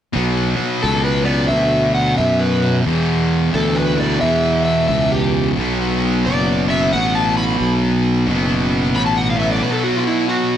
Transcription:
0.13 0.56 B1 medium
0.13 1.22 B2 medium
0.13 1.23 F#3 medium
0.13 1.24 B3 medium
0.59 muted fingered electric bass stroke soft
0.83 1.49 C#2 medium
0.83 1.04 A4 medium
1.04 1.25 B4 medium
1.25 2.85 B2 medium
1.25 2.86 F#3 medium
1.25 4.75 B3 medium
1.25 1.48 D5 medium
1.48 2.17 D2 medium
1.48 1.94 E5 medium
1.94 2.17 F#5 medium
2.18 2.85 F#2 medium
2.18 2.40 E5 medium
2.40 2.77 B4 medium
2.85 3.94 E2 medium
2.85 3.52 E2 medium
2.85 3.95 B2 medium
2.85 3.94 E3 medium
3.54 4.20 D2 medium
3.54 3.77 A4 medium
3.75 3.98 B4 medium
3.95 5.57 E2 medium
3.95 5.56 B2 medium
3.95 5.55 E3 medium
4.00 4.20 D5 medium
4.21 4.88 E2 medium
4.21 4.64 E5 medium
4.65 4.87 E5 medium
4.88 5.55 C#2 medium
4.88 5.11 E5 medium
5.12 5.48 G4 medium
5.57 6.23 B1 medium
5.57 6.71 B2 medium
5.57 6.69 F#3 medium
5.57 6.67 B3 medium
6.26 6.91 F#1 medium
6.26 6.69 D5 medium
6.67 8.27 B2 medium
6.67 8.29 F#3 medium
6.67 8.30 B3 medium
6.67 6.92 E5 medium
6.93 7.59 A1 medium
6.93 7.14 F#5 medium
7.15 7.37 A5 medium
7.37 7.73 B5 medium
7.61 8.26 B1 medium
8.27 8.93 F#1 medium
8.27 9.35 B2 medium
8.27 9.36 F#3 medium
8.27 9.35 B3 medium
8.95 9.60 A1 medium
8.95 9.06 B5 loud
9.06 9.16 A5 medium
9.17 9.30 F#5 medium
9.30 9.36 F5 medium
9.36 10.57 B2 medium
9.36 10.57 F#3 medium
9.36 10.57 B3 medium
9.40 9.52 E5 medium
9.52 9.61 D5 medium
9.62 9.72 B4 medium
9.72 9.82 A4 medium
9.84 10.03 F#4 medium
9.96 10.02 F4 medium
10.07 10.29 E4 medium
10.29 10.57 F#4 medium

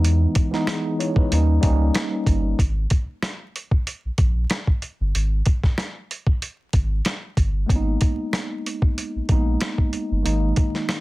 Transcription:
0.00 0.26 E2 loud
0.00 0.37 E3 loud
0.00 0.38 G#3 medium
0.00 0.38 B3 loud
0.00 0.38 D#4 loud
0.04 closed hi-hat loud
0.35 kick loud
0.35 closed hi-hat medium
0.51 1.31 E3 medium
0.51 1.31 G#3 medium
0.51 0.66 B3 medium
0.51 0.68 D#4 loud
0.51 snare soft
0.67 0.98 B3 medium
0.67 0.98 G#4 medium
0.67 cross-stick loud
0.67 snare loud
0.67 closed hi-hat medium
0.99 1.16 E4 medium
0.99 1.16 C#5 medium
0.99 closed hi-hat medium
1.16 1.33 D#4 medium
1.16 1.48 B4 medium
1.16 kick loud
1.31 1.59 D#2 loud
1.31 1.58 G3 loud
1.31 1.58 A#3 medium
1.31 1.59 C#4 medium
1.31 1.59 D#4 loud
1.31 closed hi-hat loud
1.61 1.90 C#2 medium
1.61 2.42 G3 medium
1.61 2.43 A#3 medium
1.61 2.44 C#4 medium
1.61 2.44 D#4 loud
1.61 kick loud
1.61 closed hi-hat medium
1.94 cross-stick medium
1.94 snare loud
1.94 closed hi-hat medium
2.26 2.54 G1 medium
2.26 kick medium
2.26 closed hi-hat medium
2.59 2.86 G#1 loud
2.59 kick loud
2.59 closed hi-hat loud
2.90 kick medium
2.90 closed hi-hat medium
3.23 cross-stick medium
3.23 snare loud
3.23 closed hi-hat medium
3.56 closed hi-hat medium
3.71 kick medium
3.87 closed hi-hat medium
4.05 4.10 A#1 soft
4.18 4.46 A#1 medium
4.18 kick loud
4.18 closed hi-hat medium
4.50 cross-stick medium
4.50 snare loud
4.50 closed hi-hat medium
4.67 kick medium
4.82 closed hi-hat medium
5.00 5.12 G1 medium
5.15 5.42 G#1 loud
5.15 closed hi-hat loud
5.46 kick loud
5.46 closed hi-hat medium
5.63 kick medium
5.63 snare soft
5.78 cross-stick medium
5.78 snare loud
5.78 closed hi-hat medium
6.11 closed hi-hat medium
6.27 kick medium
6.42 closed hi-hat medium
6.73 7.01 G#1 loud
6.73 kick loud
6.73 closed hi-hat medium
7.05 cross-stick medium
7.05 snare loud
7.05 closed hi-hat medium
7.37 7.65 G1 medium
7.37 kick medium
7.37 closed hi-hat medium
7.66 7.97 G#1 loud
7.66 8.74 G#3 medium
7.66 8.75 A#3 medium
7.66 8.75 B3 medium
7.66 7.77 C#4 medium
7.66 kick loud
7.66 closed hi-hat loud
7.76 8.79 D#4 medium
8.01 kick medium
8.01 closed hi-hat medium
8.33 cross-stick medium
8.33 snare loud
8.33 closed hi-hat medium
8.66 closed hi-hat medium
8.82 kick medium
8.98 closed hi-hat medium
9.15 9.21 A#1 medium
9.29 9.56 A#1 medium
9.29 10.09 G#3 medium
9.29 10.10 A#3 medium
9.29 10.10 B3 medium
9.29 10.11 D#4 medium
9.29 kick loud
9.29 closed hi-hat medium
9.61 cross-stick medium
9.61 snare loud
9.61 closed hi-hat medium
9.78 kick medium
9.93 closed hi-hat medium
10.11 10.23 G1 medium
10.23 10.52 G#1 loud
10.23 11.00 D#3 medium
10.23 11.00 G#3 medium
10.23 11.00 A#3 medium
10.23 11.00 D#4 medium
10.23 closed hi-hat loud
10.56 kick loud
10.56 closed hi-hat medium
10.75 snare soft
10.89 cross-stick medium
10.89 snare loud
10.89 closed hi-hat medium

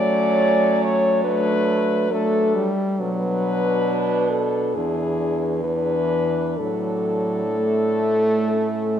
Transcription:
0.00 2.68 F#3 loud
0.00 1.22 A3 medium
0.00 1.26 C#4 loud
0.00 0.85 D5 loud
0.83 1.24 C#5 loud
1.25 2.10 A3 medium
1.25 2.10 D4 medium
1.25 2.14 B4 loud
2.10 2.57 A3 loud
2.10 2.71 D4 medium
2.10 2.73 A4 loud
2.55 3.02 G3 loud
3.00 4.77 B2 loud
3.00 4.48 F#3 medium
3.00 4.71 D4 loud
3.00 4.32 B4 loud
4.31 4.76 A4 loud
4.75 6.58 E2 medium
4.75 5.62 E3 medium
4.75 5.64 D4 medium
4.75 5.64 G#4 loud
5.64 6.58 E3 medium
5.64 6.57 D4 medium
5.64 6.60 B4 loud
6.58 9.00 A2 medium
6.58 7.44 F#3 medium
6.58 8.47 D4 medium
6.58 9.00 A4 loud
7.55 9.00 A3 loud
8.50 9.00 C#4 medium

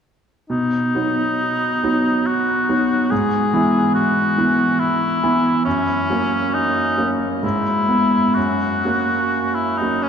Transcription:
0.50 0.93 B2 soft
0.50 2.28 D#4 soft
0.95 1.79 F#3 soft
0.95 1.80 B3 soft
0.95 1.80 D#4 soft
1.83 2.65 F#3 soft
1.83 2.65 B3 soft
1.83 2.65 D#4 soft
2.27 3.12 F#4 soft
2.69 3.07 F#3 soft
2.69 3.07 B3 soft
2.69 3.07 D#4 soft
3.11 3.52 G#2 soft
3.11 3.94 G#4 soft
3.53 4.34 E3 soft
3.53 4.34 B3 soft
3.53 4.34 E4 soft
3.95 4.81 F#4 medium
4.38 5.19 E3 soft
4.38 5.19 B3 soft
4.38 5.19 E4 soft
4.80 5.64 E4 medium
5.23 5.62 E3 soft
5.23 5.62 B3 soft
5.23 5.62 E4 soft
5.65 6.09 F#2 soft
5.65 6.55 C#4 soft
6.10 6.94 F#3 soft
6.10 6.95 A#3 soft
6.10 6.95 C#4 soft
6.54 7.15 D#4 medium
6.98 7.39 F#3 soft
6.98 7.39 A#3 soft
6.98 7.39 C#4 soft
7.43 7.87 G#2 soft
7.43 8.36 E4 medium
7.88 8.32 B3 soft
8.35 8.83 F#2 soft
8.35 9.56 F#4 soft
8.85 9.76 F#3 soft
8.85 9.76 A#3 soft
8.85 9.77 C#4 soft
9.55 9.79 E4 soft
9.78 10.09 F#3 soft
9.78 10.09 A#3 soft
9.78 10.04 D#4 soft
9.82 10.09 C#4 soft
10.03 10.09 C#4 soft

